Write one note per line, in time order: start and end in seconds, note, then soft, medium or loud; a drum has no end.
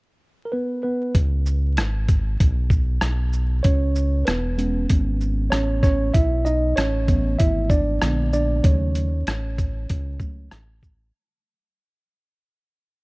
0.45 0.52 A#4 medium
0.52 0.82 B3 medium
0.52 0.81 B4 medium
0.83 1.13 B3 medium
0.83 1.15 B4 medium
1.15 1.80 C#2 loud
1.15 kick medium
1.15 closed hi-hat medium
1.46 shaker medium
1.77 2.37 G#1 medium
1.77 cross-stick loud
1.77 closed hi-hat medium
2.08 kick medium
2.08 closed hi-hat soft
2.08 shaker soft
2.40 2.99 B1 loud
2.40 kick loud
2.40 closed hi-hat medium
2.70 kick medium
2.70 shaker soft
3.01 3.61 B1 medium
3.01 cross-stick loud
3.01 closed hi-hat medium
3.33 shaker soft
3.63 4.24 C#2 loud
3.63 4.23 C#4 medium
3.63 4.28 C#5 medium
3.63 kick loud
3.63 closed hi-hat medium
3.95 shaker medium
4.25 4.87 E1 medium
4.25 4.57 B3 medium
4.25 4.85 B4 medium
4.25 cross-stick loud
4.25 closed hi-hat medium
4.57 6.10 G#3 soft
4.57 6.10 B3 soft
4.57 5.51 C#4 medium
4.57 closed hi-hat soft
4.57 shaker soft
4.90 5.49 G#1 loud
4.90 kick medium
4.90 closed hi-hat medium
5.21 shaker soft
5.50 6.12 A1 loud
5.50 5.81 C#4 medium
5.50 5.82 C#5 medium
5.50 cross-stick loud
5.50 closed hi-hat medium
5.83 6.13 C#4 medium
5.83 6.12 C#5 medium
5.83 kick medium
5.83 cross-stick soft
5.83 shaker medium
6.14 6.74 B1 medium
6.14 6.44 E4 medium
6.14 6.46 E5 loud
6.14 kick loud
6.14 closed hi-hat medium
6.45 6.75 D#4 medium
6.45 6.78 D#5 loud
6.45 shaker medium
6.76 7.37 A1 medium
6.76 7.36 C#4 medium
6.76 7.41 C#5 medium
6.76 cross-stick loud
6.76 closed hi-hat medium
7.07 7.98 E3 medium
7.07 7.98 A3 soft
7.07 7.98 B3 medium
7.07 kick medium
7.07 closed hi-hat soft
7.07 shaker soft
7.39 7.99 G#1 medium
7.39 7.69 E4 medium
7.39 7.68 E5 medium
7.39 kick medium
7.39 closed hi-hat medium
7.70 8.30 D4 medium
7.70 8.32 D5 medium
7.70 kick medium
7.70 shaker soft
8.01 8.62 A#1 loud
8.01 8.61 D3 soft
8.01 8.61 G#3 soft
8.01 8.62 B3 medium
8.01 cross-stick loud
8.01 closed hi-hat medium
8.33 8.63 D4 medium
8.33 8.66 D5 medium
8.33 shaker medium
8.63 9.24 D#2 loud
8.63 9.08 C#3 medium
8.63 9.08 F#3 soft
8.63 9.08 A3 medium
8.63 10.48 C#4 medium
8.63 10.48 C#5 medium
8.63 kick loud
8.63 closed hi-hat medium
8.95 closed hi-hat medium
8.95 shaker medium
9.27 9.86 A1 medium
9.27 cross-stick loud
9.27 closed hi-hat medium
9.58 kick medium
9.58 closed hi-hat soft
9.58 shaker soft
9.89 10.49 C#2 medium
9.89 kick medium
9.89 closed hi-hat medium
10.20 10.49 C#3 soft
10.20 10.49 F#3 soft
10.20 10.49 A3 soft
10.20 kick medium
10.20 shaker soft
10.51 11.12 A1 medium
10.51 cross-stick loud
10.51 closed hi-hat medium
10.83 kick medium
10.83 shaker soft